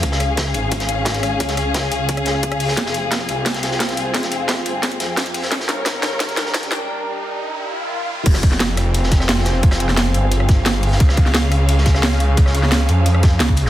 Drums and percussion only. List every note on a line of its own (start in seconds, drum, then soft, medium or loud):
0.03 kick loud
0.03 closed hi-hat medium
0.12 snare medium
0.20 cross-stick soft
0.20 closed hi-hat medium
0.37 kick loud
0.37 snare loud
0.37 closed hi-hat medium
0.54 closed hi-hat medium
0.71 kick medium
0.71 closed hi-hat medium
0.80 snare soft
0.80 closed hi-hat soft
0.89 closed hi-hat medium
1.05 kick loud
1.05 snare loud
1.05 closed hi-hat medium
1.14 snare soft
1.14 closed hi-hat soft
1.23 cross-stick soft
1.23 closed hi-hat medium
1.40 kick loud
1.40 closed hi-hat medium
1.48 snare soft
1.48 closed hi-hat soft
1.57 cross-stick soft
1.57 closed hi-hat medium
1.74 kick medium
1.74 snare loud
1.74 closed hi-hat medium
1.92 closed hi-hat medium
2.09 kick medium
2.09 closed hi-hat medium
2.17 cross-stick soft
2.17 closed hi-hat soft
2.25 snare soft
2.25 closed hi-hat medium
2.34 cross-stick soft
2.43 kick medium
2.43 closed hi-hat medium
2.52 cross-stick medium
2.52 closed hi-hat soft
2.60 closed hi-hat medium
2.60 open hi-hat medium
2.68 snare soft
2.77 kick loud
2.77 snare soft
2.77 closed hi-hat medium
2.86 snare medium
2.94 closed hi-hat medium
3.11 kick medium
3.11 snare loud
3.11 snare medium
3.11 closed hi-hat medium
3.29 closed hi-hat medium
3.46 kick medium
3.46 snare medium
3.46 closed hi-hat loud
3.46 closed hi-hat medium
3.54 snare soft
3.54 closed hi-hat soft
3.63 snare medium
3.63 closed hi-hat medium
3.71 snare soft
3.80 kick loud
3.80 snare medium
3.80 snare loud
3.80 closed hi-hat medium
3.89 snare soft
3.89 closed hi-hat soft
3.97 closed hi-hat medium
4.14 kick loud
4.14 snare medium
4.14 closed hi-hat medium
4.23 snare soft
4.23 closed hi-hat soft
4.32 closed hi-hat medium
4.48 kick loud
4.48 snare loud
4.48 snare medium
4.48 closed hi-hat medium
4.66 closed hi-hat medium
4.83 kick medium
4.83 snare medium
4.83 closed hi-hat medium
4.92 closed hi-hat soft
5.00 snare soft
5.00 closed hi-hat medium
5.17 kick loud
5.17 snare loud
5.17 snare medium
5.17 closed hi-hat medium
5.26 closed hi-hat soft
5.34 closed hi-hat medium
5.34 open hi-hat medium
5.43 snare soft
5.52 kick loud
5.52 snare medium
5.52 closed hi-hat loud
5.52 closed hi-hat medium
5.60 snare medium
5.68 snare medium
5.68 closed hi-hat medium
5.85 kick loud
5.85 snare loud
5.85 snare medium
5.85 closed hi-hat medium
5.85 closed hi-hat loud
6.02 snare medium
6.02 snare loud
6.02 closed hi-hat medium
6.20 kick loud
6.20 snare medium
6.20 snare loud
6.20 closed hi-hat medium
6.20 closed hi-hat loud
6.29 snare soft
6.29 closed hi-hat soft
6.37 snare medium
6.37 closed hi-hat medium
6.46 snare soft
6.54 kick loud
6.54 snare loud
6.54 snare medium
6.54 closed hi-hat loud
6.54 closed hi-hat medium
6.63 snare soft
6.63 closed hi-hat soft
6.71 snare medium
6.71 closed hi-hat medium
8.26 kick loud
8.26 closed hi-hat medium
8.26 closed hi-hat loud
8.26 crash loud
8.34 cross-stick soft
8.34 snare medium
8.43 kick loud
8.43 closed hi-hat medium
8.52 snare soft
8.60 snare loud
8.60 closed hi-hat medium
8.60 closed hi-hat loud
8.77 cross-stick medium
8.77 closed hi-hat medium
8.94 closed hi-hat medium
8.94 closed hi-hat loud
9.03 snare soft
9.11 kick medium
9.11 snare medium
9.11 closed hi-hat medium
9.20 cross-stick soft
9.20 snare soft
9.28 snare loud
9.28 closed hi-hat medium
9.28 closed hi-hat loud
9.38 snare soft
9.45 snare loud
9.45 closed hi-hat medium
9.63 kick loud
9.63 closed hi-hat medium
9.71 cross-stick medium
9.71 snare loud
9.71 closed hi-hat medium
9.80 closed hi-hat medium
9.89 snare soft
9.89 closed hi-hat medium
9.97 snare loud
9.97 closed hi-hat loud
9.97 closed hi-hat medium
10.14 closed hi-hat medium
10.32 closed hi-hat loud
10.32 closed hi-hat medium
10.40 cross-stick medium
10.49 kick loud
10.49 snare soft
10.49 closed hi-hat medium
10.65 snare loud
10.65 closed hi-hat loud
10.65 closed hi-hat medium
10.83 closed hi-hat medium
10.83 open hi-hat medium
10.92 snare soft
11.00 kick loud
11.00 closed hi-hat medium
11.09 cross-stick soft
11.09 snare medium
11.17 kick loud
11.17 closed hi-hat medium
11.26 snare soft
11.34 snare loud
11.34 closed hi-hat medium
11.34 closed hi-hat loud
11.52 cross-stick soft
11.52 closed hi-hat medium
11.69 closed hi-hat loud
11.69 closed hi-hat medium
11.78 snare soft
11.86 kick medium
11.86 snare medium
11.86 closed hi-hat medium
11.95 cross-stick soft
11.95 snare soft
12.03 snare loud
12.03 closed hi-hat medium
12.12 snare soft
12.20 closed hi-hat medium
12.37 kick loud
12.37 closed hi-hat loud
12.37 closed hi-hat medium
12.46 cross-stick soft
12.46 snare soft
12.54 closed hi-hat medium
12.63 snare soft
12.72 snare loud
12.72 closed hi-hat medium
12.72 closed hi-hat loud
12.89 closed hi-hat medium
13.06 closed hi-hat loud
13.06 closed hi-hat medium
13.15 cross-stick soft
13.23 kick loud
13.23 snare loud
13.23 closed hi-hat medium
13.40 snare loud
13.40 closed hi-hat medium
13.49 kick medium
13.57 closed hi-hat medium
13.66 snare soft